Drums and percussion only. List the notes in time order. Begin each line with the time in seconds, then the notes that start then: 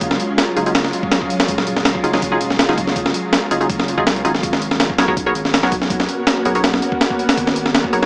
0.01 kick, closed hi-hat
0.11 snare
0.20 closed hi-hat
0.38 snare, closed hi-hat
0.57 closed hi-hat
0.66 closed hi-hat
0.75 snare, closed hi-hat
0.84 snare
0.93 closed hi-hat
1.03 kick
1.11 snare, closed hi-hat
1.21 kick
1.30 closed hi-hat
1.40 snare, closed hi-hat
1.48 kick, closed hi-hat
1.58 snare
1.67 closed hi-hat
1.77 snare
1.85 snare, closed hi-hat
1.95 kick
2.04 closed hi-hat
2.14 snare
2.22 kick, closed hi-hat
2.41 closed hi-hat
2.50 snare
2.59 snare, closed hi-hat
2.69 snare
2.77 kick, closed hi-hat
2.87 snare
2.96 kick, closed hi-hat
3.06 snare
3.14 closed hi-hat
3.33 snare, closed hi-hat
3.51 closed hi-hat
3.61 closed hi-hat
3.70 kick, closed hi-hat
3.80 snare
3.88 closed hi-hat
3.98 kick
4.07 snare, closed hi-hat
4.16 closed hi-hat
4.25 closed hi-hat
4.35 snare
4.43 kick, closed hi-hat
4.53 snare
4.62 closed hi-hat
4.71 snare
4.80 snare, closed hi-hat
4.90 kick
4.98 snare, closed hi-hat
5.08 kick
5.17 kick, closed hi-hat
5.35 closed hi-hat
5.45 snare
5.54 snare, closed hi-hat
5.63 snare
5.72 kick, closed hi-hat
5.82 snare
5.90 kick, closed hi-hat
6.00 snare
6.09 closed hi-hat
6.27 snare, closed hi-hat
6.45 closed hi-hat
6.55 closed hi-hat
6.64 snare, closed hi-hat
6.74 snare
6.82 closed hi-hat
6.92 kick
7.01 snare, closed hi-hat
7.10 kick
7.19 closed hi-hat
7.29 snare, closed hi-hat
7.38 kick, closed hi-hat
7.47 snare
7.56 closed hi-hat
7.66 snare
7.75 snare, closed hi-hat
7.84 kick
7.93 closed hi-hat